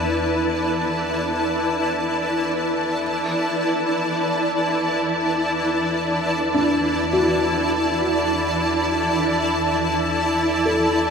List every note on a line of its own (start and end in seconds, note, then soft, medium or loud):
0.00 2.96 E2 medium
0.00 11.10 E4 medium
0.00 6.92 B4 medium
0.00 11.10 D5 medium
0.00 11.10 A5 medium
3.01 11.10 E2 medium
6.54 7.66 D4 soft
7.13 10.43 F#4 soft
10.65 11.10 A4 soft